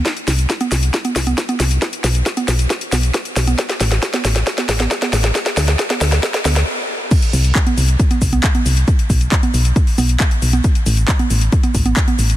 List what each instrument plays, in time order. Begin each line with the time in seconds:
0.05 kick, snare, closed hi-hat, shaker
0.17 closed hi-hat, shaker
0.28 fm bass C2, snare, open hi-hat, shaker
0.39 closed hi-hat, shaker
0.49 kick, snare, closed hi-hat, shaker
0.61 closed hi-hat, high conga, shaker
0.72 fm bass C2, snare, open hi-hat, shaker
0.83 closed hi-hat, shaker
0.94 kick, snare, closed hi-hat, shaker
1.05 closed hi-hat, high conga, shaker
1.16 fm bass C2, kick, snare, open hi-hat, shaker
1.27 closed hi-hat, high conga, shaker
1.38 kick, snare, closed hi-hat, shaker
1.49 closed hi-hat, high conga, shaker
1.60 fm bass C2, snare, open hi-hat, shaker
1.71 closed hi-hat, shaker
1.82 kick, snare, closed hi-hat, shaker
1.93 closed hi-hat, shaker
2.04 fm bass B1, snare, open hi-hat, shaker
2.15 closed hi-hat, shaker
2.26 kick, snare, closed hi-hat, shaker
2.37 closed hi-hat, high conga, shaker
2.48 fm bass B1, snare, open hi-hat, shaker
2.59 closed hi-hat, shaker
2.70 kick, snare, closed hi-hat, shaker
2.81 closed hi-hat, shaker
2.92 fm bass B1, snare, open hi-hat, high conga, shaker
3.03 closed hi-hat, shaker
3.14 kick, snare, closed hi-hat, shaker
3.25 closed hi-hat, shaker
3.36 fm bass B1, snare, open hi-hat, shaker
3.47 closed hi-hat, high conga, shaker
3.58 kick, snare, closed hi-hat, shaker
3.69 snare, closed hi-hat, shaker
3.80 fm bass A1, snare, open hi-hat, shaker
3.92 snare, closed hi-hat, shaker
4.02 kick, snare, closed hi-hat, shaker
4.14 snare, closed hi-hat, high conga, shaker
4.25 fm bass A1, snare, open hi-hat, shaker
4.36 snare, closed hi-hat, shaker
4.47 kick, snare, closed hi-hat, shaker
4.58 snare, closed hi-hat, high conga, shaker
4.69 fm bass A1, kick, snare, open hi-hat, shaker
4.80 snare, closed hi-hat, high conga, shaker
4.91 kick, snare, closed hi-hat, shaker
5.02 snare, closed hi-hat, high conga, shaker
5.13 fm bass A1, snare, open hi-hat, shaker
5.24 snare, closed hi-hat, shaker
5.35 kick, snare, closed hi-hat, shaker
5.46 snare, closed hi-hat, shaker
5.57 fm bass D2, snare, open hi-hat, shaker
5.68 snare, closed hi-hat, shaker
5.79 kick, snare, closed hi-hat, shaker
5.90 snare, closed hi-hat, high conga, shaker
6.01 fm bass D2, snare, open hi-hat, shaker
6.12 snare, closed hi-hat, shaker
6.23 kick, snare, closed hi-hat, shaker
6.34 snare, closed hi-hat, shaker
6.45 fm bass D2, snare, open hi-hat, high conga, shaker
6.56 snare, closed hi-hat, shaker
7.11 kick, closed hi-hat, crash, shaker
7.22 closed hi-hat, shaker
7.33 fm bass C2, open hi-hat, shaker
7.44 closed hi-hat, shaker
7.55 kick, clap, closed hi-hat, shaker
7.67 closed hi-hat, high conga, shaker
7.78 fm bass C2, open hi-hat, shaker
7.89 closed hi-hat, shaker
8.00 kick, closed hi-hat, shaker
8.11 closed hi-hat, high conga, shaker
8.22 fm bass C2, kick, open hi-hat, shaker
8.33 closed hi-hat, high conga, shaker
8.44 kick, clap, closed hi-hat, shaker
8.55 closed hi-hat, high conga, shaker
8.66 fm bass C2, open hi-hat, shaker
8.77 closed hi-hat, shaker
8.88 kick, closed hi-hat, shaker
8.99 closed hi-hat, shaker
9.10 fm bass B1, kick, open hi-hat, shaker
9.21 closed hi-hat, shaker
9.32 kick, clap, closed hi-hat, shaker
9.43 closed hi-hat, high conga, shaker
9.54 fm bass B1, open hi-hat, shaker
9.65 closed hi-hat, shaker
9.76 kick, closed hi-hat, shaker
9.87 open hi-hat, shaker
9.98 fm bass B1, open hi-hat, high conga, shaker
10.09 closed hi-hat, shaker
10.20 kick, clap, closed hi-hat, shaker
10.31 closed hi-hat, shaker
10.42 fm bass B1, open hi-hat, shaker
10.53 closed hi-hat, high conga, shaker
10.64 kick, closed hi-hat, shaker
10.75 closed hi-hat, shaker
10.86 fm bass A1, open hi-hat, shaker
10.97 closed hi-hat, shaker
11.08 kick, clap, closed hi-hat, shaker
11.19 closed hi-hat, high conga, shaker
11.30 fm bass A1, open hi-hat, shaker
11.41 closed hi-hat, shaker
11.52 kick, closed hi-hat, shaker
11.63 closed hi-hat, high conga, shaker
11.75 fm bass A1, kick, open hi-hat, shaker
11.86 closed hi-hat, high conga, shaker
11.97 kick, clap, closed hi-hat, shaker
12.08 closed hi-hat, high conga, shaker
12.19 fm bass A1, open hi-hat, shaker
12.30 closed hi-hat, shaker